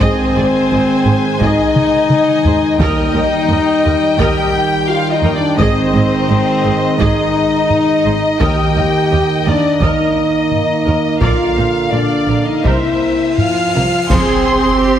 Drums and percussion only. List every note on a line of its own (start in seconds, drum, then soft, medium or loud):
0.01 taiko medium
1.41 taiko medium
1.75 taiko mid medium
2.10 taiko mid medium
2.45 taiko low medium
2.80 taiko medium
4.19 taiko medium
5.59 taiko medium
7.00 taiko medium
7.70 taiko low-mid medium
8.41 taiko medium
9.81 taiko medium
10.51 taiko low-mid medium
11.21 taiko medium
12.65 taiko medium
13.38 taiko low-mid medium
14.10 concert bass drum medium
14.10 taiko medium
14.10 crash medium